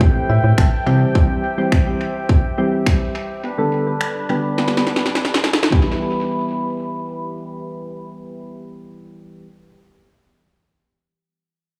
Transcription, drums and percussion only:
0.01 kick loud
0.58 finger snap loud
0.58 kick loud
1.15 kick loud
1.72 finger snap loud
1.72 kick loud
2.29 kick loud
2.86 finger snap loud
2.86 kick loud
4.01 finger snap loud
4.58 snare medium
4.68 snare soft
4.77 snare medium
4.87 snare medium
4.96 snare medium
5.06 snare medium
5.15 snare medium
5.25 snare medium
5.34 snare medium
5.44 snare medium
5.53 snare medium
5.63 snare medium
5.72 kick medium

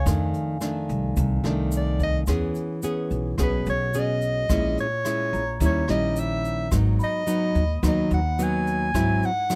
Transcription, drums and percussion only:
0.06 kick medium
0.06 cross-stick medium
0.06 closed hi-hat soft
0.06 shaker medium
0.34 closed hi-hat soft
0.34 shaker soft
0.61 cross-stick medium
0.61 closed hi-hat soft
0.61 shaker medium
0.89 closed hi-hat soft
0.89 shaker soft
1.17 kick medium
1.17 closed hi-hat soft
1.17 shaker medium
1.44 cross-stick medium
1.44 closed hi-hat soft
1.44 shaker soft
1.72 closed hi-hat soft
1.72 shaker medium
2.00 kick medium
2.00 closed hi-hat soft
2.00 shaker soft
2.27 kick medium
2.27 cross-stick medium
2.27 closed hi-hat soft
2.27 shaker medium
2.55 closed hi-hat soft
2.55 shaker soft
2.83 closed hi-hat soft
2.83 shaker medium
3.11 closed hi-hat soft
3.11 shaker soft
3.38 kick medium
3.38 cross-stick medium
3.38 closed hi-hat soft
3.38 shaker medium
3.66 closed hi-hat soft
3.66 shaker soft
3.94 closed hi-hat soft
3.94 shaker medium
4.21 closed hi-hat soft
4.21 shaker soft
4.49 kick medium
4.49 cross-stick medium
4.49 closed hi-hat soft
4.49 shaker medium
4.77 closed hi-hat soft
4.77 shaker soft
5.05 cross-stick medium
5.05 closed hi-hat soft
5.05 shaker medium
5.33 closed hi-hat soft
5.33 shaker soft
5.60 kick medium
5.60 closed hi-hat soft
5.60 shaker medium
5.88 cross-stick medium
5.88 closed hi-hat soft
5.88 shaker soft
6.16 closed hi-hat medium
6.16 shaker medium
6.44 closed hi-hat soft
6.44 shaker soft
6.71 kick medium
6.71 cross-stick medium
6.71 closed hi-hat soft
6.71 shaker medium
7.00 closed hi-hat soft
7.00 shaker soft
7.27 closed hi-hat soft
7.27 shaker medium
7.55 closed hi-hat soft
7.55 shaker soft
7.83 kick medium
7.83 cross-stick medium
7.83 closed hi-hat soft
7.83 shaker medium
8.11 closed hi-hat soft
8.11 shaker soft
8.39 closed hi-hat soft
8.39 shaker medium
8.67 closed hi-hat soft
8.67 shaker soft
8.94 kick medium
8.94 cross-stick medium
8.94 closed hi-hat soft
8.94 shaker medium
9.23 closed hi-hat soft
9.23 shaker soft
9.50 cross-stick medium
9.50 closed hi-hat soft
9.50 shaker medium

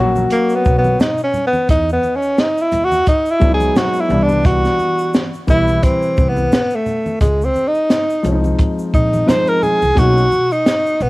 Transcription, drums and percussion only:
0.16 high conga medium
0.16 shaker soft
0.30 closed hi-hat medium
0.30 shaker medium
0.49 shaker soft
0.65 kick medium
0.65 shaker soft
0.66 shaker soft
0.84 high conga medium
0.84 shaker soft
1.00 snare loud
1.00 closed hi-hat medium
1.00 low conga medium
1.00 shaker medium
1.18 shaker soft
1.33 low conga medium
1.33 shaker soft
1.35 shaker medium
1.53 high conga medium
1.53 shaker soft
1.69 kick medium
1.69 closed hi-hat medium
1.69 shaker medium
1.89 shaker soft
2.02 high conga soft
2.02 shaker medium
2.02 shaker soft
2.22 shaker soft
2.38 snare medium
2.38 closed hi-hat medium
2.38 shaker medium
2.58 shaker soft
2.72 closed hi-hat medium
2.72 low conga medium
2.72 shaker soft
2.72 shaker medium
2.92 high conga medium
2.92 shaker medium
3.07 kick medium
3.07 closed hi-hat medium
3.07 shaker soft
3.26 shaker soft
3.41 kick medium
3.41 shaker soft
3.43 shaker soft
3.60 high conga medium
3.60 shaker soft
3.76 snare loud
3.76 closed hi-hat medium
3.76 low conga medium
3.76 shaker medium
3.94 shaker soft
4.10 low conga medium
4.10 shaker soft
4.12 shaker soft
4.29 high conga medium
4.29 shaker soft
4.45 kick loud
4.45 closed hi-hat medium
4.45 shaker medium
4.65 snare soft
4.65 shaker soft
4.78 high conga soft
4.78 shaker medium
4.78 shaker soft
4.98 shaker soft
5.14 snare loud
5.14 closed hi-hat medium
5.14 shaker medium
5.34 shaker soft
5.48 kick medium
5.48 closed hi-hat medium
5.48 low conga medium
5.48 shaker soft
5.48 shaker medium
5.68 high conga medium
5.68 shaker medium
5.83 kick medium
5.83 closed hi-hat medium
5.83 shaker medium
6.02 shaker soft
6.17 kick medium
6.17 shaker soft
6.19 shaker soft
6.37 high conga medium
6.37 shaker soft
6.52 snare loud
6.52 closed hi-hat medium
6.52 low conga medium
6.52 shaker medium
6.70 shaker soft
6.86 low conga medium
6.86 shaker soft
7.06 high conga medium
7.06 shaker soft
7.21 kick loud
7.21 closed hi-hat medium
7.21 shaker medium
7.41 shaker soft
7.54 high conga soft
7.54 shaker medium
7.55 shaker soft
7.74 shaker soft
7.90 snare loud
7.90 closed hi-hat medium
7.90 shaker medium
8.10 shaker soft
8.24 closed hi-hat soft
8.24 low conga medium
8.24 shaker soft
8.24 shaker medium
8.44 high conga soft
8.44 shaker medium
8.59 kick medium
8.59 closed hi-hat medium
8.59 shaker soft
8.79 shaker soft
8.94 kick medium
8.94 shaker soft
9.13 high conga medium
9.13 shaker soft
9.29 snare loud
9.29 closed hi-hat medium
9.29 low conga medium
9.29 shaker medium
9.47 shaker soft
9.63 low conga medium
9.63 shaker soft
9.63 shaker medium
9.82 high conga medium
9.82 shaker soft
9.97 kick medium
9.97 closed hi-hat medium
9.97 shaker soft
10.17 shaker soft
10.30 high conga soft
10.30 shaker medium
10.32 shaker soft
10.51 shaker soft
10.66 snare loud
10.66 closed hi-hat medium
10.66 shaker medium
10.87 shaker soft
11.00 low conga medium
11.00 shaker medium
11.00 shaker soft

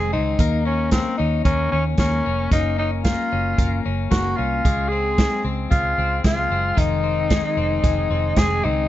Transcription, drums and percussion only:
0.39 kick medium
0.39 closed hi-hat medium
0.91 kick medium
0.91 snare loud
0.91 closed hi-hat medium
1.45 kick medium
1.45 closed hi-hat medium
1.97 kick medium
1.97 snare medium
1.97 closed hi-hat medium
2.51 kick loud
2.51 closed hi-hat medium
3.04 kick medium
3.04 snare loud
3.04 closed hi-hat medium
3.58 kick medium
3.58 closed hi-hat medium
4.11 kick medium
4.11 snare medium
4.11 closed hi-hat medium
4.65 kick loud
4.65 closed hi-hat medium
5.18 kick medium
5.18 snare loud
5.18 closed hi-hat medium
5.72 kick loud
5.72 closed hi-hat medium
6.24 kick medium
6.24 snare medium
6.24 closed hi-hat medium
6.78 kick loud
6.78 closed hi-hat medium
7.30 kick medium
7.30 snare loud
7.30 closed hi-hat medium
7.84 kick loud
7.84 closed hi-hat medium
8.36 kick medium
8.36 snare medium
8.36 closed hi-hat medium

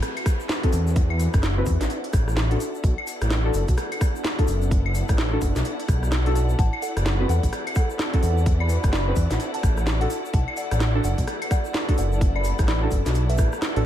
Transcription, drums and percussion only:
0.03 cross-stick medium
0.03 closed hi-hat medium
0.03 shaker soft
0.17 closed hi-hat medium
0.17 claves medium
0.26 kick loud
0.26 cross-stick medium
0.26 open hi-hat loud
0.26 shaker medium
0.40 shaker medium
0.49 snare loud
0.49 shaker soft
0.63 kick loud
0.63 closed hi-hat medium
0.73 open hi-hat loud
0.73 shaker medium
0.87 shaker medium
0.96 kick loud
0.96 closed hi-hat medium
0.96 shaker soft
1.10 claves medium
1.19 open hi-hat loud
1.19 shaker loud
1.34 kick loud
1.34 cross-stick medium
1.34 closed hi-hat medium
1.34 shaker medium
1.43 snare loud
1.43 shaker soft
1.66 kick medium
1.66 open hi-hat loud
1.66 shaker medium
1.81 snare medium
1.81 closed hi-hat medium
1.81 shaker medium
1.90 closed hi-hat medium
1.90 shaker soft
2.04 closed hi-hat medium
2.13 kick loud
2.13 cross-stick medium
2.13 open hi-hat loud
2.13 shaker medium
2.28 cross-stick medium
2.28 shaker medium
2.37 snare loud
2.37 shaker soft
2.51 closed hi-hat medium
2.60 open hi-hat loud
2.60 shaker medium
2.75 shaker soft
2.84 kick loud
2.84 closed hi-hat medium
2.84 shaker soft
2.98 claves medium
3.07 open hi-hat loud
3.07 shaker medium
3.22 cross-stick medium
3.22 closed hi-hat medium
3.22 shaker medium
3.30 snare loud
3.30 shaker soft
3.54 open hi-hat loud
3.54 shaker loud
3.68 kick medium
3.68 closed hi-hat medium
3.68 shaker medium
3.77 cross-stick medium
3.77 closed hi-hat medium
3.77 shaker soft
3.92 closed hi-hat medium
3.92 claves medium
4.01 kick loud
4.01 cross-stick medium
4.01 open hi-hat loud
4.01 shaker medium
4.16 shaker medium
4.24 snare loud
4.24 shaker soft
4.39 kick loud
4.39 closed hi-hat soft
4.48 open hi-hat loud
4.48 shaker medium
4.62 shaker medium
4.71 kick loud
4.71 closed hi-hat medium
4.71 shaker soft
4.86 claves medium
4.95 open hi-hat loud
4.95 shaker loud
5.08 kick loud
5.08 cross-stick medium
5.08 closed hi-hat medium
5.08 shaker medium
5.18 snare loud
5.18 shaker soft
5.41 kick medium
5.41 open hi-hat medium
5.41 shaker loud
5.56 snare medium
5.56 closed hi-hat medium
5.56 shaker medium
5.65 closed hi-hat medium
5.65 shaker soft
5.80 closed hi-hat medium
5.88 kick loud
5.88 cross-stick medium
5.88 open hi-hat loud
5.88 shaker medium
6.03 cross-stick medium
6.03 shaker medium
6.12 snare loud
6.12 shaker soft
6.26 closed hi-hat medium
6.35 open hi-hat loud
6.35 shaker loud
6.49 shaker soft
6.59 kick loud
6.59 closed hi-hat medium
6.59 shaker soft
6.73 claves medium
6.82 open hi-hat loud
6.82 shaker medium
6.97 cross-stick medium
6.97 closed hi-hat medium
6.97 shaker medium
7.06 snare loud
7.06 shaker soft
7.29 open hi-hat loud
7.29 shaker medium
7.43 kick medium
7.43 closed hi-hat medium
7.43 shaker medium
7.53 cross-stick medium
7.53 closed hi-hat medium
7.53 shaker soft
7.67 closed hi-hat medium
7.67 claves medium
7.75 kick loud
7.75 cross-stick medium
7.75 open hi-hat loud
7.75 shaker medium
7.90 shaker medium
7.99 snare loud
7.99 shaker soft
8.14 kick loud
8.14 closed hi-hat medium
8.23 open hi-hat loud
8.23 shaker medium
8.38 shaker soft
8.46 kick loud
8.46 closed hi-hat medium
8.46 shaker soft
8.60 claves medium
8.69 open hi-hat loud
8.69 shaker medium
8.84 kick loud
8.84 cross-stick medium
8.84 closed hi-hat medium
8.84 shaker medium
8.93 snare loud
8.93 shaker soft
9.16 kick medium
9.16 open hi-hat loud
9.16 shaker loud
9.31 snare medium
9.31 closed hi-hat medium
9.31 shaker medium
9.40 closed hi-hat medium
9.40 shaker soft
9.54 closed hi-hat medium
9.63 kick loud
9.63 cross-stick medium
9.63 open hi-hat loud
9.63 shaker medium
9.77 cross-stick medium
9.77 shaker medium
9.86 snare loud
9.86 shaker soft
10.01 closed hi-hat medium
10.10 open hi-hat loud
10.10 shaker medium
10.25 shaker soft
10.33 kick loud
10.33 closed hi-hat medium
10.33 shaker soft
10.48 claves medium
10.57 open hi-hat loud
10.57 shaker medium
10.71 cross-stick medium
10.71 closed hi-hat medium
10.71 shaker medium
10.80 snare loud
10.80 shaker soft
11.04 open hi-hat loud
11.04 shaker medium
11.18 kick medium
11.18 closed hi-hat medium
11.18 shaker soft
11.27 cross-stick medium
11.27 closed hi-hat medium
11.27 shaker soft
11.42 closed hi-hat medium
11.42 claves medium
11.51 kick loud
11.51 cross-stick medium
11.51 open hi-hat loud
11.51 shaker medium
11.65 shaker soft
11.74 snare loud
11.74 shaker soft
11.89 kick loud
11.89 closed hi-hat medium
11.98 open hi-hat loud
11.98 shaker medium
12.12 shaker soft
12.21 kick loud
12.21 closed hi-hat medium
12.21 shaker soft
12.36 claves medium
12.44 open hi-hat loud
12.44 shaker medium
12.59 kick loud
12.59 cross-stick medium
12.59 closed hi-hat medium
12.59 shaker medium
12.68 snare loud
12.68 shaker soft
12.91 kick medium
12.91 open hi-hat loud
12.91 shaker medium
13.06 snare medium
13.06 closed hi-hat medium
13.06 shaker medium
13.14 closed hi-hat medium
13.14 shaker soft
13.30 closed hi-hat medium
13.38 kick loud
13.38 cross-stick medium
13.38 open hi-hat loud
13.38 shaker medium
13.52 cross-stick medium
13.52 shaker medium
13.62 snare loud
13.62 shaker soft
13.76 closed hi-hat medium

